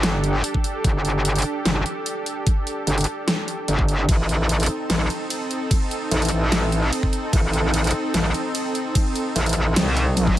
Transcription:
Already playing: wobble bass G1, supersaw synth D4 G4 A4
0.03 snare, closed hi-hat
0.24 closed hi-hat
0.44 closed hi-hat
0.54 kick
0.64 closed hi-hat
0.84 wobble bass G1, kick, closed hi-hat
1.05 closed hi-hat
1.25 closed hi-hat
1.36 closed hi-hat
1.38 closed hi-hat
1.42 closed hi-hat
1.65 wobble bass G1, snare, closed hi-hat
1.86 closed hi-hat
2.06 closed hi-hat
2.26 closed hi-hat
2.47 kick, closed hi-hat
2.67 closed hi-hat
2.87 wobble bass G1, closed hi-hat
2.98 closed hi-hat
3.01 closed hi-hat
3.04 closed hi-hat
3.28 snare, closed hi-hat
3.48 closed hi-hat
3.68 wobble bass G1, closed hi-hat
3.79 kick
3.88 closed hi-hat
4.09 wobble bass A1, supersaw synth C4 D#4 A4, kick, closed hi-hat, ride
4.29 closed hi-hat
4.49 closed hi-hat, ride
4.60 closed hi-hat
4.63 closed hi-hat
4.66 closed hi-hat
4.90 wobble bass A1, snare, closed hi-hat, ride
5.10 closed hi-hat
5.30 closed hi-hat, ride
5.51 closed hi-hat
5.71 kick, closed hi-hat, ride
5.91 closed hi-hat
6.11 wobble bass A1, closed hi-hat, ride
6.22 closed hi-hat
6.25 closed hi-hat
6.29 wobble bass A1, closed hi-hat
6.52 snare, closed hi-hat, ride
6.72 closed hi-hat
6.93 closed hi-hat, ride
7.03 kick
7.13 closed hi-hat
7.33 wobble bass A1, kick, closed hi-hat, ride
7.53 closed hi-hat
7.74 closed hi-hat, ride
7.84 closed hi-hat
7.87 closed hi-hat
7.91 closed hi-hat
8.14 wobble bass A1, snare, closed hi-hat, ride
8.34 closed hi-hat
8.55 closed hi-hat, ride
8.75 closed hi-hat
8.95 kick, closed hi-hat, ride
9.16 closed hi-hat
9.36 wobble bass A1, closed hi-hat, ride
9.46 closed hi-hat
9.49 closed hi-hat
9.53 wobble bass A1, closed hi-hat
9.76 wobble bass C2, snare, closed hi-hat, ride
9.97 closed hi-hat
10.17 closed hi-hat, high tom, ride
10.27 kick, high tom

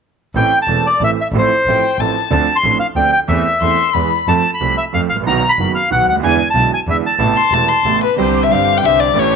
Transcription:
0.35 double bass A1, grand piano A1 A2 E3 A3 C4 A4, bandoneon G5
0.62 bandoneon A5
0.68 double bass E1, grand piano E1 E2 E3 A3 C4 A4
0.87 bandoneon D5
1.00 grand piano A1 A2 E3 A3 C4 A4, double bass A1, bandoneon E5
1.21 bandoneon E5
1.32 double bass A1, grand piano A1 A2 F3 C4 E4 A4
1.38 bandoneon C5
1.66 double bass A1, grand piano A1 A2 F3 C4 E4 A4, violin G5
1.99 double bass A1, grand piano A1 A2 F3 C4 E4 A4, violin A5
2.30 grand piano D2 D3 F3 C4 D4 A4, double bass D2, bandoneon A5
2.56 bandoneon C6
2.63 grand piano A1 A2 F3 C4 D4 A4, double bass A1
2.80 bandoneon F5
2.95 grand piano D2 D3 F3 C4 D4 A4, double bass D2, bandoneon G5
3.12 bandoneon G5
3.28 grand piano E2 E3 A3 C4 A4, double bass E2, bandoneon E5
3.61 double bass E2, grand piano E2 E3 A3 C4 A4, violin C6
3.94 grand piano E2 E3 G#3 B3 G#4, double bass E2, violin B5
4.27 double bass F2, grand piano F2 F3 A3 C4 A4, bandoneon A5
4.54 bandoneon B5
4.60 grand piano C2 C3 F3 A3 C4 A4, double bass C2
4.78 bandoneon E5
4.92 grand piano F2 F3 A3 C4 A4, double bass F2, bandoneon F5
5.09 double bass A1, bandoneon F5
5.16 grand piano G#1
5.20 grand piano A1 A#1
5.26 double bass B1, grand piano B1 B2 D#3 F#3 B3 F#4, bandoneon A#5
5.49 bandoneon B5
5.59 double bass F#1, grand piano F#1 F#2 D#3 F#3 B3 F#4
5.75 bandoneon F5
5.90 grand piano B1 B2 D#3 F#3 B3 F#4, double bass B1, bandoneon F#5
6.06 double bass D2, bandoneon F#5
6.12 grand piano C#2 D2
6.19 grand piano D#2 E2 D3 B3, double bass E2
6.23 grand piano E3 G#3 E4, bandoneon G#5
6.50 bandoneon A5
6.54 grand piano B1 B2 D3 G#3 B3 E4, double bass B1
6.74 bandoneon G#5
6.87 double bass E2, grand piano E2 D3 E3 G#3 B3 E4, bandoneon E5
7.06 bandoneon A5
7.19 grand piano A1 A2 C3 A3 B3 E4, double bass A1
7.37 violin C6
7.51 double bass E1, grand piano E1 E2 C3 A3 B3 E4, violin A5
7.69 violin C6
7.84 double bass A1, grand piano A1 A2 C3 A3 B3 E4
8.04 violin B4
8.16 double bass C2, grand piano C2 C3 D3 G3 C4, string section C4 D4 G4, violin C5
8.21 grand piano G4
8.43 violin E5
8.48 grand piano G1 G2 D3 G3 C4, double bass G1, string section C4 D4 G4, violin F5
8.53 grand piano G4
8.77 violin G5
8.82 double bass C2, grand piano C2 C3 D3 G3 C4 G4, string section C4 D4 G4, violin E5
9.00 violin D5
9.13 grand piano A1 A2 E3 A3 C#4 G4, double bass A1, string section A3 C#4 G4
9.19 violin C#5

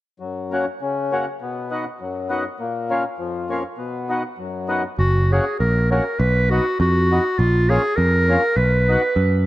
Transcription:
0.20 accordion F#2
0.51 accordion A#3 C#4 F#4
0.81 accordion C#3
1.12 accordion A#3 C#4 F#4
1.41 accordion B2
1.71 accordion B3 D#4 F#4
2.00 accordion F#2
2.29 accordion B3 D#4 F#4
2.60 accordion A#2
2.90 accordion A#3 C#4 F4
3.18 accordion F2
3.49 accordion A#3 C#4 F4
3.78 accordion B2
4.09 accordion B3 D#4 F#4
4.38 accordion F#2
4.68 accordion B3 D#4 F#4
4.99 picked electric bass F#1, clarinet F#4
5.32 accordion A#3 C#4 F#4, clarinet G#4
5.59 picked electric bass A#1, clarinet A#4
5.91 accordion A#3 C#4 F#4, clarinet A#4
6.20 picked electric bass B1, clarinet B4
6.50 accordion B3 D#4 F#4, clarinet F#4
6.80 picked electric bass F2, clarinet F#4
7.11 accordion B3 D#4 F#4
7.39 picked electric bass A#1, clarinet F4
7.69 accordion A#3 C#4 F4, clarinet G#4
7.96 picked electric bass F2, clarinet A#4
8.29 accordion A#3 C#4 F4
8.56 picked electric bass B1, clarinet B4
8.88 accordion B3 D#4 F#4
9.16 picked electric bass F#2

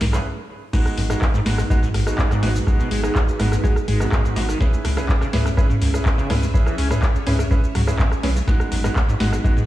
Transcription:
0.01 sub bass B1, acid bass D#3, snare, mid tom, open hi-hat
0.13 acid bass C#3, grand piano C#4 E4 G#4 B4, cross-stick, clap, shaker
0.73 acid bass G#2, string machine G#3 D#4 F#4 B4, grand piano G#3 B3 D#4 F#4, kick, snare, crash, shaker
0.86 cross-stick, shaker
0.97 sub bass G#1, acid bass F#2, open hi-hat
1.10 acid bass G#2, grand piano G#3 B3 D#4 F#4, cross-stick, shaker
1.22 acid bass B2, kick, cross-stick, clap, shaker
1.34 acid bass G#2, shaker
1.46 sub bass G#1, grand piano G#3 B3 D#4 F#4, snare, mid tom, open hi-hat
1.58 acid bass G#2, cross-stick, shaker
1.70 grand piano G#3 B3 D#4 F#4, kick, shaker
1.83 acid bass G#2, mid tom, shaker
1.94 sub bass G#1, acid bass G#1, cross-stick, open hi-hat
2.07 grand piano G#3 B3 D#4 F#4, cross-stick, shaker
2.18 acid bass B2, kick, clap, shaker
2.31 acid bass G#2, cross-stick, shaker
2.43 sub bass G#1, grand piano G#3 B3 D#4 F#4, acid bass G#3, snare, mid tom, open hi-hat
2.55 acid bass G#2, shaker
2.67 grand piano G#3 B3 D#4 F#4, kick, cross-stick, shaker
2.79 acid bass B2, shaker
2.91 sub bass G#1, acid bass G#3, open hi-hat
3.03 grand piano G#3 B3 D#4 F#4, synth pluck G#4, cross-stick, shaker
3.15 synth pluck G#4, kick, clap, shaker
3.28 shaker
3.39 sub bass G#1, grand piano G#3 B3 D#4 F#4, acid bass G#3, cross-stick, mid tom, open hi-hat
3.52 acid bass G#2, cross-stick, shaker
3.64 acid bass G#2, grand piano G#3 B3 D#4 F#4, synth pluck G#4, kick, shaker
3.76 cross-stick, shaker
3.88 sub bass G#1, acid bass G#3, mid tom, open hi-hat
4.00 acid bass G#2, grand piano G#3 B3 D#4 F#4, cross-stick, shaker
4.12 acid bass G#2, kick, cross-stick, clap, shaker
4.25 shaker
4.36 sub bass G#1, grand piano G#3 B3 D#4 F#4, acid bass G#3, snare, open hi-hat
4.48 acid bass D#3, cross-stick, shaker
4.60 acid bass C#3, string machine C#4 G#4 E5, grand piano C#4 E4 G#4 B4, kick, snare, shaker
4.74 shaker
4.85 sub bass C#2, acid bass B2, cross-stick, open hi-hat
4.97 acid bass C#3, grand piano C#4 E4 G#4 B4, cross-stick, shaker
5.09 acid bass E3, kick, clap, shaker
5.21 acid bass C#3, cross-stick, shaker
5.33 sub bass C#2, grand piano C#4 E4 G#4 B4, snare, mid tom, open hi-hat
5.45 acid bass C#3, cross-stick, shaker
5.57 grand piano C#4 E4 G#4 B4, kick, cross-stick, shaker
5.69 acid bass C#3, mid tom, shaker
5.81 acid bass C#2, sub bass C#2, open hi-hat
5.94 grand piano C#4 E4 G#4 B4, cross-stick, shaker
6.06 acid bass E3, kick, clap, shaker
6.18 acid bass C#3, shaker
6.30 sub bass C#2, grand piano C#4 E4 G#4 B4, acid bass C#4, cross-stick, snare, mid tom, open hi-hat
6.42 acid bass C#3, shaker
6.54 grand piano C#4 E4 G#4 B4, string machine C#5, kick, shaker
6.66 acid bass E3, cross-stick, shaker
6.78 sub bass C#2, acid bass C#4, open hi-hat
6.91 grand piano C#4 E4 G#4 B4, cross-stick, mid tom, shaker
7.02 kick, cross-stick, clap, shaker
7.15 shaker
7.27 sub bass C#2, acid bass C#4, grand piano C#4 E4 G#4 B4, mid tom, open hi-hat
7.39 acid bass C#3, cross-stick, shaker
7.51 acid bass C#3, grand piano C#4 E4 G#4 B4, kick, shaker
7.64 shaker
7.75 sub bass C#2, acid bass F#3, cross-stick, mid tom, open hi-hat
7.87 acid bass C#3, grand piano C#4 E4 G#4 B4, cross-stick, shaker
7.99 acid bass B2, kick, clap, shaker
8.12 cross-stick, shaker
8.23 sub bass B1, grand piano C#4 E4 G#4 B4, acid bass C#4, snare, open hi-hat
8.36 acid bass C#3, shaker
8.47 acid bass G#2, grand piano G#3 B3 D#4 F#4, string machine G#3 D#4 F#4 B4, kick, snare, shaker
8.60 cross-stick, shaker
8.72 sub bass G#1, acid bass F#2, open hi-hat
8.84 acid bass G#2, grand piano G#3 B3 D#4 F#4, cross-stick, shaker
8.96 acid bass B2, kick, cross-stick, clap, shaker
9.08 acid bass G#2, shaker
9.20 sub bass G#1, grand piano G#3 B3 D#4 F#4, snare, mid tom, open hi-hat
9.32 acid bass G#2, cross-stick, shaker
9.44 grand piano G#3 B3 D#4 F#4, kick, shaker
9.57 acid bass G#2, mid tom, shaker

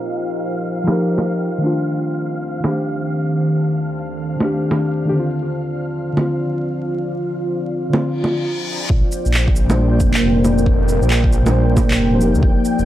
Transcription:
Already playing: synth keys F3 D#4 G4 A#4, ambient pad F4 C5 D#5 G5 A#5, synth texture F5
0.84 synth keys F3 D#4, low bongo
0.89 synth keys G4 A#4
1.18 low bongo
1.58 synth keys D#3 A3
1.63 synth keys D4 F4
1.85 ambient pad D#3
2.22 ambient pad D5
2.60 synth keys D#3 A3, low bongo
2.65 synth keys D4 G4, ambient pad A5
4.37 synth keys D#3 A3, low bongo
4.42 synth keys D4 G4
4.71 low bongo
5.05 synth keys D#3 A3 D4
5.09 synth keys D3 G4
5.15 synth keys C4
5.19 synth keys F4
5.37 ambient pad F4
6.13 synth keys D3 C4
6.17 synth keys F4, low bongo
7.90 synth keys D3, low bongo
7.94 synth keys C4
7.98 synth keys F4, reverse cymbal
8.24 low bongo
8.90 detuned saw bass A#1, ambient pad A#3, synth texture G5, kick
9.12 shaker
9.21 ambient pad A#4
9.26 detuned saw bass A#1, shaker
9.34 ambient pad G5, clap
9.48 kick
9.56 detuned saw bass A#1, shaker
9.66 synth keys A#2 G3
9.70 synth keys D4 C5, low bongo, shaker
10.00 detuned saw bass F1, kick, shaker
10.14 clap
10.22 detuned saw bass F1
10.44 low bongo, shaker
10.58 shaker
10.66 kick
10.89 shaker
11.02 detuned saw bass A#1, shaker
11.10 clap
11.24 kick
11.32 detuned saw bass A#1, shaker
11.42 synth keys A#2 G3
11.46 synth keys D4, low bongo, shaker
11.51 synth keys C5
11.77 kick, low bongo, shaker
11.91 detuned saw bass A#1, clap
11.99 detuned saw bass F1
12.11 synth keys A#2 G3 D4
12.15 synth keys F3 C5
12.20 detuned saw bass F1, synth keys D#4 G4, shaker
12.25 synth keys A#4
12.35 detuned saw bass D2, shaker
12.43 detuned saw bass F1, ambient pad F4, kick
12.65 ambient pad D#5, shaker
12.79 detuned saw bass F1, shaker

